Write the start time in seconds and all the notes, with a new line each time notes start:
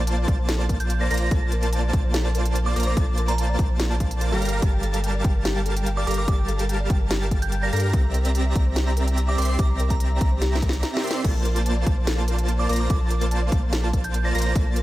Already playing: A#1 A#3 F4 C5 D5 A5 A6
0.07 A5, closed hi-hat
0.18 D5
0.28 A#1 A#3 C5 D5 A5 A6, kick, closed hi-hat
0.39 C5
0.49 A4, snare, closed hi-hat
0.59 A5
0.69 A#4, kick, closed hi-hat
0.80 A5 G6, closed hi-hat
0.90 A5, closed hi-hat
1.01 D5 A#6
1.11 A#1 A#3 F4 A#4 C5 D5 A#5 A#6, closed hi-hat
1.14 closed hi-hat
1.17 C5, closed hi-hat
1.31 A#1 A#3 F4 A4 C5 A5 A6, kick, closed hi-hat
1.42 A5
1.52 A#4, closed hi-hat
1.63 A#4, closed hi-hat
1.73 A5, closed hi-hat
1.83 D5
1.93 A#1 A5 A6, kick, closed hi-hat
2.04 C5
2.14 A4, snare, closed hi-hat
2.25 A5
2.35 A#4, closed hi-hat
2.45 A5, closed hi-hat
2.55 A5, closed hi-hat
2.66 D5 D6
2.76 A#1 A#3 F4 A#4 C5 D5 A#5 D6 A#6, closed hi-hat
2.80 closed hi-hat
2.83 C5, closed hi-hat
2.87 D6
2.97 A#1 A#3 F4 A4 C5 D5 A5 D6 A6, kick, closed hi-hat
3.08 A5
3.18 A#4, closed hi-hat
3.28 A#4 A#5, closed hi-hat
3.38 A5, closed hi-hat
3.49 D5
3.59 A#1 F4 C5 D5 A5 A6, kick, closed hi-hat
3.70 C5
3.80 A4, snare, closed hi-hat
3.90 A5
4.00 F5, kick, closed hi-hat
4.11 A5, closed hi-hat
4.21 A#4, closed hi-hat
4.32 G1 G3 G4 A4 A#4 F5 A#5 A#6
4.42 D5, closed hi-hat
4.45 closed hi-hat
4.49 F5, closed hi-hat
4.62 G1 G4 A#4 F5 A5 A6, kick, closed hi-hat
4.73 G5
4.83 A4, closed hi-hat
4.94 A4, closed hi-hat
5.04 G5, closed hi-hat
5.15 D5
5.24 G1 G3 G4 A#4 F5 G5 A5 A6, kick, closed hi-hat
5.35 A#4
5.45 G4, snare, closed hi-hat
5.56 G5
5.66 A4, closed hi-hat
5.77 G5, closed hi-hat
5.86 G5, closed hi-hat
5.97 D5 D6
6.07 G1 G3 G4 A4 A#4 F5 A#5 D6 A#6, closed hi-hat
6.11 closed hi-hat
6.14 D6, closed hi-hat
6.18 A#4
6.28 G1 G3 G4 F5 D6 A6, kick, closed hi-hat
6.39 G5
6.48 A4, closed hi-hat
6.59 A4, closed hi-hat
6.69 G5, closed hi-hat
6.80 D5
6.90 G1 A#4 G5 A5 A6, kick, closed hi-hat
7.01 A#4
7.11 G4, snare, closed hi-hat
7.21 G5
7.31 A4, kick, closed hi-hat
7.42 G5 G6, closed hi-hat
7.52 G5, closed hi-hat
7.63 D5 A#6
7.73 G2 G3 G4 A4 A#4 F5 A#5 A#6, closed hi-hat
7.76 closed hi-hat
7.80 A#4, closed hi-hat
7.93 C2 C4 G4 D5 E5 A#5 A#6, kick, closed hi-hat
8.04 A#5
8.14 A#4, closed hi-hat
8.25 A#4, closed hi-hat
8.35 A#5, closed hi-hat
8.46 E5
8.55 C2 C4 G4 D5 E5 A#5 A#6, kick, closed hi-hat
8.66 C5
8.76 G4, snare, closed hi-hat
8.87 A#5
8.97 A#4, closed hi-hat
9.08 A#5, closed hi-hat
9.18 A#5, closed hi-hat
9.28 E5 D6
9.38 C2 C4 G4 A#4 D5 E5 C6 D6 C7, closed hi-hat
9.42 closed hi-hat
9.45 C5, closed hi-hat
9.49 D6
9.59 C2 C4 G4 D5 E5 A#5 D6 A#6, kick, closed hi-hat
9.70 A#5
9.80 A#4, closed hi-hat
9.90 A#5, kick, closed hi-hat
10.00 A#5, closed hi-hat
10.11 E5
10.21 C2 C4 G4 D5 E5 A#5 A#6, kick, closed hi-hat
10.32 C5
10.42 G4, snare, closed hi-hat
10.53 A#5, snare
10.62 A#4, kick, closed hi-hat
10.69 A#5, snare, closed hi-hat
10.83 A#5, snare, closed hi-hat
10.94 E5, snare
11.04 C4 G4 A#4 D5 E5 C6 C7, closed hi-hat
11.07 snare, closed hi-hat
11.11 C5, closed hi-hat
11.24 A#1 A#3 F4 A4 C5 D5 A5 A6, kick, closed hi-hat, crash, ride
11.35 A5
11.45 A#4, closed hi-hat
11.56 A#4, closed hi-hat
11.66 A5, closed hi-hat
11.77 D5
11.87 A#1 A#3 F4 C5 D5 A5 A6, kick, closed hi-hat
11.97 C5
12.07 A4, snare, closed hi-hat, ride
12.18 A5
12.28 A#4, closed hi-hat
12.39 A5, closed hi-hat
12.48 A5, closed hi-hat
12.59 D5 D6
12.69 A#1 A#3 F4 A#4 C5 D5 A#5 D6 A#6, closed hi-hat
12.73 closed hi-hat
12.76 closed hi-hat
12.80 C5 D6
12.90 A#1 A#3 F4 A4 D6 A6, kick, closed hi-hat, ride
13.01 A5
13.10 A#4, closed hi-hat
13.21 A#4, closed hi-hat
13.31 A5, closed hi-hat
13.42 D5
13.52 A#1 A#3 F4 A5 A6, kick, closed hi-hat
13.63 C5
13.73 A4, snare, closed hi-hat, ride
13.84 A5
13.93 A#4, kick, closed hi-hat
14.04 A5 G6, closed hi-hat
14.14 A5, closed hi-hat
14.25 D5 A#6
14.35 A#1 A#3 F4 A#4 C5 D5 A#5 A#6, closed hi-hat
14.38 closed hi-hat
14.42 closed hi-hat
14.46 C5
14.56 A#1 A#3 A4 C5 D5 A6, kick, closed hi-hat, ride
14.66 A5
14.76 A#4, closed hi-hat